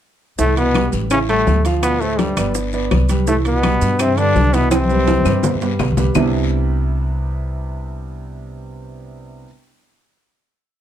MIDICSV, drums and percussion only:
0, 0, Header, 1, 2, 480
1, 0, Start_track
1, 0, Key_signature, 0, "major"
1, 0, Tempo, 360360
1, 517, Time_signature, 4, 2, 24, 8
1, 14396, End_track
2, 0, Start_track
2, 0, Title_t, "Drums"
2, 513, Note_on_c, 9, 70, 77
2, 516, Note_on_c, 9, 60, 58
2, 519, Note_on_c, 9, 74, 58
2, 521, Note_on_c, 9, 63, 27
2, 646, Note_off_c, 9, 70, 0
2, 649, Note_off_c, 9, 60, 0
2, 652, Note_off_c, 9, 74, 0
2, 654, Note_off_c, 9, 63, 0
2, 754, Note_on_c, 9, 63, 28
2, 759, Note_on_c, 9, 60, 31
2, 760, Note_on_c, 9, 70, 26
2, 762, Note_on_c, 9, 65, 60
2, 887, Note_off_c, 9, 63, 0
2, 892, Note_off_c, 9, 60, 0
2, 894, Note_off_c, 9, 70, 0
2, 896, Note_off_c, 9, 65, 0
2, 991, Note_on_c, 9, 63, 84
2, 994, Note_on_c, 9, 75, 56
2, 995, Note_on_c, 9, 70, 26
2, 996, Note_on_c, 9, 73, 62
2, 997, Note_on_c, 9, 60, 54
2, 1004, Note_on_c, 9, 65, 82
2, 1124, Note_off_c, 9, 63, 0
2, 1127, Note_off_c, 9, 75, 0
2, 1128, Note_off_c, 9, 70, 0
2, 1130, Note_off_c, 9, 73, 0
2, 1131, Note_off_c, 9, 60, 0
2, 1137, Note_off_c, 9, 65, 0
2, 1227, Note_on_c, 9, 73, 64
2, 1234, Note_on_c, 9, 70, 60
2, 1235, Note_on_c, 9, 63, 31
2, 1360, Note_off_c, 9, 73, 0
2, 1368, Note_off_c, 9, 63, 0
2, 1368, Note_off_c, 9, 70, 0
2, 1469, Note_on_c, 9, 70, 74
2, 1476, Note_on_c, 9, 60, 58
2, 1476, Note_on_c, 9, 74, 64
2, 1476, Note_on_c, 9, 75, 54
2, 1480, Note_on_c, 9, 65, 81
2, 1481, Note_on_c, 9, 63, 31
2, 1603, Note_off_c, 9, 70, 0
2, 1609, Note_off_c, 9, 60, 0
2, 1609, Note_off_c, 9, 74, 0
2, 1609, Note_off_c, 9, 75, 0
2, 1613, Note_off_c, 9, 65, 0
2, 1615, Note_off_c, 9, 63, 0
2, 1716, Note_on_c, 9, 70, 24
2, 1719, Note_on_c, 9, 60, 32
2, 1722, Note_on_c, 9, 65, 62
2, 1724, Note_on_c, 9, 63, 30
2, 1849, Note_off_c, 9, 70, 0
2, 1852, Note_off_c, 9, 60, 0
2, 1855, Note_off_c, 9, 65, 0
2, 1857, Note_off_c, 9, 63, 0
2, 1952, Note_on_c, 9, 63, 69
2, 1955, Note_on_c, 9, 73, 59
2, 1959, Note_on_c, 9, 66, 64
2, 1960, Note_on_c, 9, 70, 25
2, 1961, Note_on_c, 9, 60, 32
2, 1961, Note_on_c, 9, 61, 70
2, 2086, Note_off_c, 9, 63, 0
2, 2089, Note_off_c, 9, 73, 0
2, 2092, Note_off_c, 9, 66, 0
2, 2093, Note_off_c, 9, 70, 0
2, 2094, Note_off_c, 9, 60, 0
2, 2094, Note_off_c, 9, 61, 0
2, 2194, Note_on_c, 9, 65, 55
2, 2197, Note_on_c, 9, 63, 31
2, 2200, Note_on_c, 9, 60, 31
2, 2200, Note_on_c, 9, 70, 63
2, 2201, Note_on_c, 9, 73, 62
2, 2328, Note_off_c, 9, 65, 0
2, 2330, Note_off_c, 9, 63, 0
2, 2333, Note_off_c, 9, 60, 0
2, 2333, Note_off_c, 9, 70, 0
2, 2334, Note_off_c, 9, 73, 0
2, 2435, Note_on_c, 9, 63, 29
2, 2435, Note_on_c, 9, 65, 89
2, 2436, Note_on_c, 9, 75, 55
2, 2437, Note_on_c, 9, 70, 77
2, 2438, Note_on_c, 9, 74, 64
2, 2439, Note_on_c, 9, 60, 61
2, 2568, Note_off_c, 9, 63, 0
2, 2568, Note_off_c, 9, 65, 0
2, 2569, Note_off_c, 9, 75, 0
2, 2570, Note_off_c, 9, 70, 0
2, 2571, Note_off_c, 9, 74, 0
2, 2572, Note_off_c, 9, 60, 0
2, 2677, Note_on_c, 9, 63, 28
2, 2681, Note_on_c, 9, 60, 31
2, 2681, Note_on_c, 9, 70, 26
2, 2810, Note_off_c, 9, 63, 0
2, 2814, Note_off_c, 9, 60, 0
2, 2814, Note_off_c, 9, 70, 0
2, 2913, Note_on_c, 9, 63, 91
2, 2915, Note_on_c, 9, 65, 62
2, 2915, Note_on_c, 9, 70, 28
2, 2916, Note_on_c, 9, 73, 62
2, 2917, Note_on_c, 9, 60, 51
2, 3046, Note_off_c, 9, 63, 0
2, 3048, Note_off_c, 9, 65, 0
2, 3048, Note_off_c, 9, 70, 0
2, 3049, Note_off_c, 9, 73, 0
2, 3050, Note_off_c, 9, 60, 0
2, 3154, Note_on_c, 9, 73, 64
2, 3155, Note_on_c, 9, 70, 67
2, 3157, Note_on_c, 9, 63, 85
2, 3157, Note_on_c, 9, 65, 84
2, 3159, Note_on_c, 9, 75, 60
2, 3288, Note_off_c, 9, 70, 0
2, 3288, Note_off_c, 9, 73, 0
2, 3290, Note_off_c, 9, 63, 0
2, 3290, Note_off_c, 9, 65, 0
2, 3292, Note_off_c, 9, 75, 0
2, 3390, Note_on_c, 9, 70, 76
2, 3394, Note_on_c, 9, 74, 63
2, 3397, Note_on_c, 9, 60, 63
2, 3404, Note_on_c, 9, 63, 33
2, 3523, Note_off_c, 9, 70, 0
2, 3527, Note_off_c, 9, 74, 0
2, 3530, Note_off_c, 9, 60, 0
2, 3538, Note_off_c, 9, 63, 0
2, 3631, Note_on_c, 9, 70, 26
2, 3643, Note_on_c, 9, 60, 33
2, 3644, Note_on_c, 9, 63, 32
2, 3765, Note_off_c, 9, 70, 0
2, 3776, Note_off_c, 9, 60, 0
2, 3777, Note_off_c, 9, 63, 0
2, 3877, Note_on_c, 9, 70, 25
2, 3877, Note_on_c, 9, 73, 57
2, 3878, Note_on_c, 9, 60, 32
2, 3878, Note_on_c, 9, 61, 78
2, 3880, Note_on_c, 9, 65, 77
2, 3881, Note_on_c, 9, 63, 68
2, 3883, Note_on_c, 9, 75, 56
2, 4010, Note_off_c, 9, 70, 0
2, 4010, Note_off_c, 9, 73, 0
2, 4011, Note_off_c, 9, 60, 0
2, 4011, Note_off_c, 9, 61, 0
2, 4013, Note_off_c, 9, 65, 0
2, 4014, Note_off_c, 9, 63, 0
2, 4016, Note_off_c, 9, 75, 0
2, 4114, Note_on_c, 9, 70, 64
2, 4120, Note_on_c, 9, 60, 30
2, 4122, Note_on_c, 9, 65, 57
2, 4124, Note_on_c, 9, 73, 58
2, 4125, Note_on_c, 9, 63, 78
2, 4247, Note_off_c, 9, 70, 0
2, 4253, Note_off_c, 9, 60, 0
2, 4255, Note_off_c, 9, 65, 0
2, 4257, Note_off_c, 9, 73, 0
2, 4258, Note_off_c, 9, 63, 0
2, 4355, Note_on_c, 9, 70, 81
2, 4358, Note_on_c, 9, 74, 63
2, 4364, Note_on_c, 9, 60, 60
2, 4488, Note_off_c, 9, 70, 0
2, 4491, Note_off_c, 9, 74, 0
2, 4497, Note_off_c, 9, 60, 0
2, 4597, Note_on_c, 9, 65, 62
2, 4602, Note_on_c, 9, 70, 26
2, 4604, Note_on_c, 9, 60, 29
2, 4607, Note_on_c, 9, 63, 26
2, 4730, Note_off_c, 9, 65, 0
2, 4736, Note_off_c, 9, 70, 0
2, 4737, Note_off_c, 9, 60, 0
2, 4740, Note_off_c, 9, 63, 0
2, 4837, Note_on_c, 9, 73, 60
2, 4838, Note_on_c, 9, 70, 26
2, 4841, Note_on_c, 9, 63, 88
2, 4841, Note_on_c, 9, 65, 86
2, 4841, Note_on_c, 9, 75, 55
2, 4845, Note_on_c, 9, 60, 52
2, 4970, Note_off_c, 9, 73, 0
2, 4971, Note_off_c, 9, 70, 0
2, 4974, Note_off_c, 9, 63, 0
2, 4974, Note_off_c, 9, 65, 0
2, 4974, Note_off_c, 9, 75, 0
2, 4978, Note_off_c, 9, 60, 0
2, 5080, Note_on_c, 9, 73, 66
2, 5081, Note_on_c, 9, 70, 66
2, 5085, Note_on_c, 9, 63, 31
2, 5213, Note_off_c, 9, 73, 0
2, 5214, Note_off_c, 9, 70, 0
2, 5218, Note_off_c, 9, 63, 0
2, 5318, Note_on_c, 9, 70, 73
2, 5318, Note_on_c, 9, 75, 59
2, 5321, Note_on_c, 9, 65, 84
2, 5327, Note_on_c, 9, 60, 59
2, 5327, Note_on_c, 9, 74, 64
2, 5329, Note_on_c, 9, 63, 33
2, 5451, Note_off_c, 9, 70, 0
2, 5451, Note_off_c, 9, 75, 0
2, 5455, Note_off_c, 9, 65, 0
2, 5460, Note_off_c, 9, 60, 0
2, 5460, Note_off_c, 9, 74, 0
2, 5463, Note_off_c, 9, 63, 0
2, 5560, Note_on_c, 9, 60, 33
2, 5562, Note_on_c, 9, 65, 58
2, 5562, Note_on_c, 9, 70, 26
2, 5567, Note_on_c, 9, 63, 31
2, 5693, Note_off_c, 9, 60, 0
2, 5695, Note_off_c, 9, 70, 0
2, 5696, Note_off_c, 9, 65, 0
2, 5700, Note_off_c, 9, 63, 0
2, 5801, Note_on_c, 9, 70, 26
2, 5803, Note_on_c, 9, 73, 59
2, 5806, Note_on_c, 9, 63, 70
2, 5807, Note_on_c, 9, 60, 34
2, 5807, Note_on_c, 9, 61, 70
2, 5934, Note_off_c, 9, 70, 0
2, 5937, Note_off_c, 9, 73, 0
2, 5940, Note_off_c, 9, 60, 0
2, 5940, Note_off_c, 9, 61, 0
2, 5940, Note_off_c, 9, 63, 0
2, 6039, Note_on_c, 9, 70, 62
2, 6041, Note_on_c, 9, 60, 29
2, 6043, Note_on_c, 9, 73, 61
2, 6044, Note_on_c, 9, 65, 60
2, 6047, Note_on_c, 9, 63, 33
2, 6172, Note_off_c, 9, 70, 0
2, 6174, Note_off_c, 9, 60, 0
2, 6176, Note_off_c, 9, 73, 0
2, 6178, Note_off_c, 9, 65, 0
2, 6180, Note_off_c, 9, 63, 0
2, 6277, Note_on_c, 9, 70, 81
2, 6278, Note_on_c, 9, 60, 61
2, 6281, Note_on_c, 9, 74, 68
2, 6282, Note_on_c, 9, 75, 54
2, 6285, Note_on_c, 9, 65, 86
2, 6287, Note_on_c, 9, 63, 80
2, 6410, Note_off_c, 9, 70, 0
2, 6411, Note_off_c, 9, 60, 0
2, 6414, Note_off_c, 9, 74, 0
2, 6415, Note_off_c, 9, 75, 0
2, 6418, Note_off_c, 9, 65, 0
2, 6420, Note_off_c, 9, 63, 0
2, 6449, Note_on_c, 9, 63, 67
2, 6516, Note_on_c, 9, 60, 30
2, 6522, Note_on_c, 9, 70, 27
2, 6582, Note_off_c, 9, 63, 0
2, 6606, Note_on_c, 9, 63, 66
2, 6649, Note_off_c, 9, 60, 0
2, 6656, Note_off_c, 9, 70, 0
2, 6739, Note_off_c, 9, 63, 0
2, 6757, Note_on_c, 9, 73, 63
2, 6760, Note_on_c, 9, 65, 78
2, 6762, Note_on_c, 9, 60, 51
2, 6764, Note_on_c, 9, 70, 26
2, 6767, Note_on_c, 9, 63, 89
2, 6890, Note_off_c, 9, 73, 0
2, 6894, Note_off_c, 9, 65, 0
2, 6896, Note_off_c, 9, 60, 0
2, 6898, Note_off_c, 9, 70, 0
2, 6900, Note_off_c, 9, 63, 0
2, 6923, Note_on_c, 9, 64, 79
2, 6993, Note_on_c, 9, 60, 78
2, 6993, Note_on_c, 9, 73, 66
2, 7000, Note_on_c, 9, 75, 62
2, 7001, Note_on_c, 9, 70, 65
2, 7004, Note_on_c, 9, 65, 76
2, 7057, Note_off_c, 9, 64, 0
2, 7084, Note_on_c, 9, 64, 76
2, 7126, Note_off_c, 9, 60, 0
2, 7126, Note_off_c, 9, 73, 0
2, 7134, Note_off_c, 9, 70, 0
2, 7134, Note_off_c, 9, 75, 0
2, 7137, Note_off_c, 9, 65, 0
2, 7217, Note_off_c, 9, 64, 0
2, 7230, Note_on_c, 9, 74, 62
2, 7237, Note_on_c, 9, 61, 77
2, 7238, Note_on_c, 9, 70, 73
2, 7243, Note_on_c, 9, 64, 71
2, 7245, Note_on_c, 9, 66, 97
2, 7363, Note_off_c, 9, 74, 0
2, 7370, Note_off_c, 9, 61, 0
2, 7371, Note_off_c, 9, 70, 0
2, 7377, Note_off_c, 9, 64, 0
2, 7378, Note_off_c, 9, 66, 0
2, 7399, Note_on_c, 9, 64, 68
2, 7476, Note_on_c, 9, 70, 28
2, 7486, Note_on_c, 9, 66, 67
2, 7532, Note_off_c, 9, 64, 0
2, 7609, Note_off_c, 9, 70, 0
2, 7619, Note_off_c, 9, 66, 0
2, 7715, Note_on_c, 9, 75, 59
2, 7717, Note_on_c, 9, 73, 58
2, 7718, Note_on_c, 9, 70, 27
2, 7720, Note_on_c, 9, 61, 74
2, 7722, Note_on_c, 9, 66, 94
2, 7724, Note_on_c, 9, 64, 60
2, 7849, Note_off_c, 9, 75, 0
2, 7850, Note_off_c, 9, 73, 0
2, 7852, Note_off_c, 9, 70, 0
2, 7853, Note_off_c, 9, 61, 0
2, 7855, Note_off_c, 9, 66, 0
2, 7857, Note_off_c, 9, 64, 0
2, 7884, Note_on_c, 9, 64, 91
2, 7955, Note_on_c, 9, 61, 78
2, 7955, Note_on_c, 9, 73, 64
2, 7957, Note_on_c, 9, 66, 74
2, 7957, Note_on_c, 9, 70, 62
2, 8017, Note_off_c, 9, 64, 0
2, 8044, Note_on_c, 9, 64, 70
2, 8088, Note_off_c, 9, 61, 0
2, 8088, Note_off_c, 9, 73, 0
2, 8090, Note_off_c, 9, 66, 0
2, 8090, Note_off_c, 9, 70, 0
2, 8177, Note_off_c, 9, 64, 0
2, 8188, Note_on_c, 9, 70, 86
2, 8193, Note_on_c, 9, 75, 84
2, 8196, Note_on_c, 9, 61, 83
2, 8196, Note_on_c, 9, 66, 93
2, 8197, Note_on_c, 9, 74, 85
2, 8202, Note_on_c, 9, 64, 88
2, 8322, Note_off_c, 9, 70, 0
2, 8326, Note_off_c, 9, 75, 0
2, 8329, Note_off_c, 9, 61, 0
2, 8329, Note_off_c, 9, 66, 0
2, 8330, Note_off_c, 9, 74, 0
2, 8336, Note_off_c, 9, 64, 0
2, 14396, End_track
0, 0, End_of_file